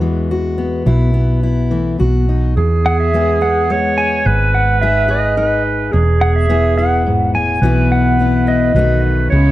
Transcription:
Already playing: E2 B3 F#4
0.01 E3 G#3
0.31 F#4
0.58 B3
0.86 B1 B2 E4
1.14 B3
1.43 E4
1.71 E3 A3
1.99 B1 B2 F#4
2.29 D#4
2.57 E2 G#4
2.86 F#5
3.00 E5
3.14 G#3 B3 G#4
3.41 B3 F#5
3.70 G#3 C#5
3.98 G#5
4.25 G#1 G#2 B4
4.55 F#5
4.81 D#4 G#4 E5
5.08 G#4 D#5
5.37 D#4 B4
5.92 E1 E2 G#4
6.21 F#5
6.36 E5
6.49 B3 E4 G#4
6.78 E4 F#5
7.06 G#2
7.34 A2 G#5
7.61 B1 B2 E3 A3 B3 B4
7.65 E4
7.92 F#5
8.19 A3 B3 E4
8.47 B3 D#5
8.74 B1 B2 D#3 A3 D#4 B4
8.79 F#4
9.30 C#2 C#3 G#3 E4 C#5

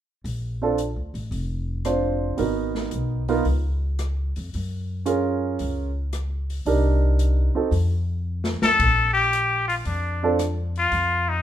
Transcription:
0.24 A#1, open hi-hat
0.62 C4 D4 F4 A4
0.78 closed hi-hat
0.96 D2
1.14 A1, open hi-hat
1.31 F1, open hi-hat
1.85 C4 D4 F4 C5, cross-stick, closed hi-hat
2.37 G#1 B3 D#4 F#4 A#4, open hi-hat
2.75 snare
2.91 B1, closed hi-hat
3.28 B3 D#4 F4 A#4, open hi-hat
3.45 C#2, open hi-hat
3.99 cross-stick, closed hi-hat
4.36 F2, open hi-hat
4.54 F#2, open hi-hat
5.06 C#4 F4 G#4 A#4, closed hi-hat
5.59 C#2, open hi-hat
6.13 cross-stick, closed hi-hat
6.50 open hi-hat
6.66 C2 D4 D#4 G4 A#4, open hi-hat
7.19 closed hi-hat
7.55 C4 D#4 F#4 A4, muted upright bass stroke
7.71 F2, open hi-hat
8.44 snare
8.62 F2 A4, snare
8.79 A#1, kick, ride
9.13 G4
9.33 closed hi-hat
9.68 F4, open hi-hat
9.85 F2 D4, open hi-hat
10.23 C4 D4 F4 A4
10.39 cross-stick, closed hi-hat
10.76 F4, open hi-hat
10.92 F2, open hi-hat
11.29 D#4

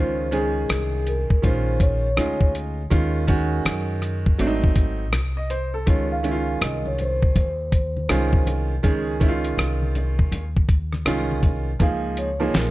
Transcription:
Already playing: C#2 D#3 G#3 C#4 F4 G#4 C5
0.31 D#3 G#3 C#4 G#4, closed hi-hat
0.69 C2, cross-stick, closed hi-hat
1.07 A#4, closed hi-hat
1.30 muted upright bass stroke, kick
1.42 A#1 D#3 G#3 C#4 F4 C5, kick, closed hi-hat
1.80 C#5, kick, closed hi-hat
2.17 D2 G#3 C#4 D#4 F4, cross-stick, closed hi-hat
2.41 kick
2.55 closed hi-hat
2.90 D#2 D#3 G#3 C#4 F4, kick, closed hi-hat
3.27 D#3 G#3 C#4 F#4, kick, closed hi-hat
3.65 F#2, cross-stick, closed hi-hat
4.02 cross-stick, closed hi-hat
4.26 kick
4.38 G#1 F#3 A3 C4 D4, closed hi-hat
4.47 D#4
4.64 kick
4.76 kick, closed hi-hat
5.13 C2, cross-stick, closed hi-hat
5.37 D#5
5.50 C5, closed hi-hat
5.74 A4
5.86 C#2 D#3 G#3 C#4 F4 C#5, kick, closed hi-hat, shaker
6.11 F5, shaker
6.23 D#3 G#3 C#4 E4, closed hi-hat, shaker
6.31 F4
6.48 shaker
6.61 C2 D#5, cross-stick, closed hi-hat, shaker
6.86 C#5, high conga, shaker
6.98 C5, closed hi-hat, low conga, shaker
7.22 kick, shaker
7.36 D#2, kick, closed hi-hat, low conga, shaker
7.59 shaker
7.72 kick, closed hi-hat, shaker
7.97 high conga, shaker
8.09 C2 D#3 G#3 C#4 F4, cross-stick, closed hi-hat, shaker
8.33 kick, shaker
8.47 closed hi-hat, high conga, low conga, shaker
8.70 shaker
8.83 C#2 D#3 G#3 C#4 G#4, kick, closed hi-hat, shaker
9.07 shaker
9.20 D#3 G#3 C#4 E4, kick, closed hi-hat, shaker
9.29 F4
9.45 closed hi-hat, shaker
9.57 C2, cross-stick, closed hi-hat, high conga, shaker
9.82 high conga, shaker
9.95 closed hi-hat, low conga, shaker
10.19 kick, shaker
10.32 D#2, closed hi-hat, low conga, shaker
10.56 kick, shaker
10.69 kick, closed hi-hat, shaker
10.93 cross-stick, high conga, shaker
11.05 C2 D#3 G#3 C#4 F4, cross-stick, closed hi-hat, shaker
11.31 high conga, shaker
11.43 kick, closed hi-hat, high conga, low conga, shaker
11.67 shaker
11.79 C#2 F3 A#3 D#4 G#4 F5, kick, closed hi-hat, shaker
12.04 shaker
12.17 C#5, closed hi-hat, shaker
12.40 F3 A#3 D#4 G#4, shaker
12.54 A#1 A#4, snare, closed hi-hat, high conga, shaker

